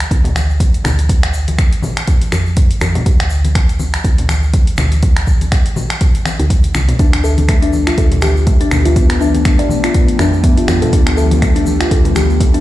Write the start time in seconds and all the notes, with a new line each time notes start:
0.00 finger snap, closed hi-hat, shaker
0.11 D2, kick, closed hi-hat, shaker
0.24 closed hi-hat, muted conga, low conga, shaker
0.35 finger snap, high conga, shaker
0.50 shaker
0.60 kick, closed hi-hat, muted conga, shaker
0.74 closed hi-hat, shaker
0.84 D2, finger snap, high conga, low conga, shaker
0.98 closed hi-hat, muted conga, high conga, shaker
1.09 kick, closed hi-hat, shaker
1.23 finger snap, closed hi-hat, shaker
1.34 shaker
1.48 closed hi-hat, muted conga, high conga, shaker
1.58 finger snap, kick, closed hi-hat, shaker
1.72 closed hi-hat, shaker
1.82 high conga, low conga, shaker
1.96 finger snap, closed hi-hat, shaker
2.07 kick, closed hi-hat, low conga, shaker
2.22 closed hi-hat, muted conga, shaker
2.32 F2, finger snap, high conga, shaker
2.46 shaker
2.56 kick, closed hi-hat, muted conga, shaker
2.71 closed hi-hat, shaker
2.81 F2, finger snap, high conga, shaker
2.95 closed hi-hat, muted conga, low conga, shaker
3.06 D2, kick, closed hi-hat, shaker
3.20 finger snap, closed hi-hat, shaker
3.30 shaker
3.44 closed hi-hat, muted conga, high conga, shaker
3.55 finger snap, kick, closed hi-hat, shaker
3.69 closed hi-hat, shaker
3.79 muted conga, high conga, shaker
3.94 finger snap, closed hi-hat, shaker
4.04 D2, kick, closed hi-hat, shaker
4.18 closed hi-hat, muted conga, low conga, shaker
4.29 finger snap, high conga, shaker
4.43 shaker
4.53 kick, closed hi-hat, muted conga, shaker
4.67 closed hi-hat, shaker
4.77 D2, finger snap, high conga, low conga, shaker
4.92 closed hi-hat, muted conga, high conga, shaker
5.03 kick, closed hi-hat, shaker
5.17 finger snap, closed hi-hat, shaker
5.27 kick, shaker
5.41 closed hi-hat, muted conga, high conga, shaker
5.52 finger snap, kick, closed hi-hat, shaker
5.66 closed hi-hat, shaker
5.76 high conga, low conga, shaker
5.90 finger snap, closed hi-hat, shaker
6.01 kick, closed hi-hat, low conga, shaker
6.14 closed hi-hat, muted conga, shaker
6.25 finger snap, high conga, shaker
6.39 D2, closed hi-hat, shaker
6.50 kick, closed hi-hat, muted conga, shaker
6.63 closed hi-hat, shaker
6.74 C2, finger snap, high conga, shaker
6.88 closed hi-hat, muted conga, low conga, shaker
6.99 D2 F3 A3 B3 D4 G4, kick, closed hi-hat, shaker
7.13 finger snap, closed hi-hat, shaker
7.24 A4, shaker
7.38 closed hi-hat, muted conga, high conga, shaker
7.48 A3, finger snap, kick, closed hi-hat, shaker
7.62 D4, closed hi-hat, shaker
7.73 muted conga, high conga, shaker
7.87 F4, finger snap, closed hi-hat, shaker
7.98 D2 A4, kick, closed hi-hat, shaker
8.12 closed hi-hat, muted conga, low conga, shaker
8.22 G4, finger snap, high conga, shaker
8.37 shaker
8.47 A3, kick, closed hi-hat, muted conga, shaker
8.61 D4, closed hi-hat, shaker
8.70 D2, finger snap, high conga, low conga, shaker
8.85 F4, closed hi-hat, muted conga, high conga, shaker
8.96 B3, kick, closed hi-hat, shaker
9.10 finger snap, closed hi-hat, shaker
9.21 D4, shaker
9.34 closed hi-hat, muted conga, high conga, shaker
9.45 D4, finger snap, kick, closed hi-hat, shaker
9.59 D5, closed hi-hat, shaker
9.69 high conga, low conga, shaker
9.84 F4, finger snap, closed hi-hat, shaker
9.94 B3, kick, closed hi-hat, low conga, shaker
10.08 closed hi-hat, muted conga, shaker
10.19 F2 D4, finger snap, high conga, shaker
10.33 shaker
10.43 B3, kick, closed hi-hat, muted conga, shaker
10.57 F4, closed hi-hat, shaker
10.68 F2, finger snap, high conga, shaker
10.82 A4, closed hi-hat, muted conga, low conga, shaker
10.93 D2 D4, kick, closed hi-hat, shaker
11.07 finger snap, closed hi-hat, shaker
11.17 A4, shaker
11.31 closed hi-hat, muted conga, high conga, shaker
11.42 A3, finger snap, kick, closed hi-hat, shaker
11.56 D4, closed hi-hat, shaker
11.66 high conga, shaker
11.81 F4, finger snap, closed hi-hat, shaker
11.91 D2 A4, kick, closed hi-hat, shaker
12.05 closed hi-hat, muted conga, low conga, shaker
12.15 G4, finger snap, high conga, shaker
12.30 shaker
12.40 A3, kick, closed hi-hat, muted conga, shaker
12.54 D4, closed hi-hat, shaker